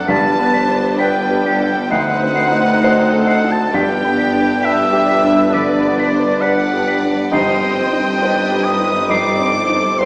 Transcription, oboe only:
0.10 A5
1.00 G5
1.91 F#5
3.29 F#5
3.52 A5
3.75 G5
4.65 E5
5.54 D5
6.41 F#5
7.31 G5
8.65 D#6
9.10 D6
9.99 C6

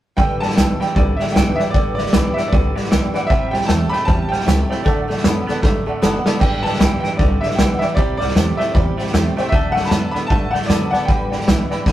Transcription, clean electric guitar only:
0.17 G2 D3
0.41 G2 D3
0.57 G2 E3
0.80 G2 E3
0.96 G2 D3
1.20 G2 D3
1.35 G2 E3
1.58 G2 E3
1.73 G2 D3
1.98 G2 D3
2.13 G2 E3
2.36 G2 E3
2.51 G2 D3
2.75 G2 D3
2.90 G2 E3
3.14 G2 E3
3.30 C3 G3
3.53 C3 G3
3.68 C3 A3
3.92 C3 A3
4.07 C3 G3
4.31 C3 G3
4.46 C3 A3
4.70 C3 A3
4.85 D3 A3
5.08 D3 A3
5.24 D3 B3
5.47 D3 B3
5.62 D3 A3
5.86 D3 A3
6.02 D3 B3
6.26 D3 B3
6.40 G2 D3
6.64 G2 D3
6.79 G2 E3
7.03 G2 E3
7.18 G2 D3
7.42 G2 D3
7.58 G2 E3
7.81 G2 E3
7.96 C3 G3
8.20 C3 G3
8.35 C3 A3
8.59 C3 A3
8.74 C3 G3
8.97 C3 G3
9.13 C3 A3
9.37 C3 A3
9.51 D3 A3
9.75 D3 A3
9.91 D3 B3
10.14 D3 B3
10.30 D3 A3
10.53 D3 A3
10.69 D3 B3
10.93 D3 B3
11.08 G2 D3
11.32 G2 D3
11.48 G2 E3
11.71 G2 E3
11.86 G2 D3

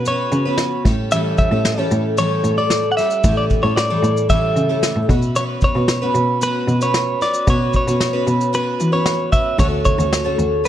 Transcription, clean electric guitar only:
0.08 C#5
1.12 E5
1.38 E5
2.18 C#5
2.58 D5
2.92 F#5
2.97 E5
3.37 D5
3.63 C#5
3.76 D5
4.30 E5
5.36 C#5
5.64 C#5
6.43 B4
6.83 C#5
7.22 D5
7.50 C#5
7.76 C#5
8.55 B4
8.93 C#5
9.32 E5
9.60 C#5
9.85 C#5

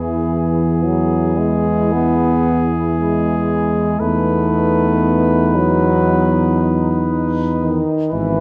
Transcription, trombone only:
Already playing: E3
0.85 F#3
1.39 G#3
1.93 B3
2.96 G#3
3.99 A3
5.55 F#3
7.60 D#3
8.12 E3

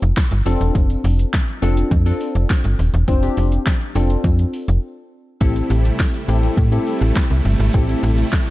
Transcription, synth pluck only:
0.46 C4 D4 F4 A4
1.62 C4 D4 F4 A4
2.06 C4 D4 F4 A4
3.08 C4 D4 F4 C5
3.22 C4 D4 F4 G4
3.95 C4 D4 F4 A4
5.41 C4 E4 G4 A4
6.28 C4 E4 G4 A4
6.72 C4 E4 G4 A4
7.74 C4 E4 G4 A4
7.88 C4 E4 G4 A4

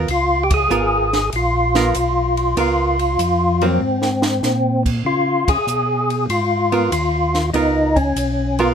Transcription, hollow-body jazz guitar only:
0.71 B3 F4 A#4
1.76 B3 F4 A#4
2.57 B3 F4 A#4
3.62 F#3 A#3 C4
6.72 B3 F4 A#4
7.54 B3 F4 A#4
8.59 B3 F4 A#4

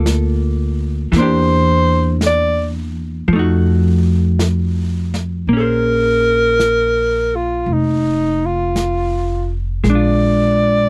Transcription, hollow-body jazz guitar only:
Already playing: G3 A#3 F4 A4
1.12 E3
1.16 A#3 D4
1.22 G4
3.28 F3
3.33 A3 D#4
3.39 F#4
5.49 A#3
5.53 C#4 G#4
5.60 C5
9.84 G#3
9.90 D4
9.95 F4

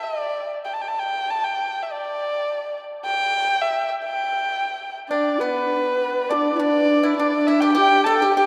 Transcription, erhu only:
0.03 D5
0.65 G5
0.74 A5
0.82 G5
0.88 A5
0.99 G5
1.30 A5
1.44 G5
1.83 E5
1.92 D5
3.06 G5
3.61 E5
3.89 E5
4.06 G5
5.10 D5
5.40 B4
6.30 D5
6.60 D5
7.17 D5
7.47 E5
7.61 G5
7.73 G5
8.04 A5
8.18 G5
8.35 G5

